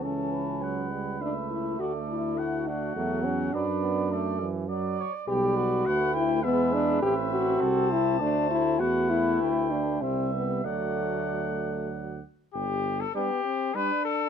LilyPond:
<<
  \new Staff \with { instrumentName = "Trumpet" } { \time 3/4 \key d \major \tempo 4 = 102 a''4 fis''4 e''4 | d''4 fis''8 fis''4. | d''4 d''8 r8 d''4 | \key g \major d''4 fis''8 g''8 e''4 |
e''4 a''2 | fis''4 g''4 e''4 | fis''2~ fis''8 r8 | g'8. a'16 g'4 b'8 a'8 | }
  \new Staff \with { instrumentName = "Flugelhorn" } { \time 3/4 \key d \major a'8 b'2~ b'8 | a'4 fis'2 | b'4 a'8 r8 d''8 cis''8 | \key g \major b'4 b'4 b'4~ |
b'4 a'8 g'8 c''4 | b'2 e''4 | d''2~ d''8 r8 | r4 d'4 d'4 | }
  \new Staff \with { instrumentName = "French horn" } { \time 3/4 \key d \major cis'4. r8 d'8 e'8 | fis'8 e'4 d'8 a8 cis'8 | d'4. r4. | \key g \major g'8 fis'4 e'8 b8 d'8 |
g'8 fis'4 e'8 d'8 e'8 | fis'8 e'4 d'8 c'8 b8 | a2 r4 | r4 b8 c'8 d'4 | }
  \new Staff \with { instrumentName = "Trombone" } { \clef bass \time 3/4 \key d \major e4 fis8 g8 a4~ | a4 a4 fis4 | fis8 b8 a8 e8 fis8 r8 | \key g \major g4 a4 gis4 |
c'2 a4 | a2 g4 | fis2~ fis8 r8 | r4 g4 g4 | }
  \new Staff \with { instrumentName = "Tuba" } { \clef bass \time 3/4 \key d \major cis,2. | d,2 e,4 | fis,2~ fis,8 r8 | \key g \major b,,4 d,4 e,4 |
a,,4 c,4 d,4 | e,4 d,4 c,4 | d,2~ d,8 r8 | g,,4 r2 | }
>>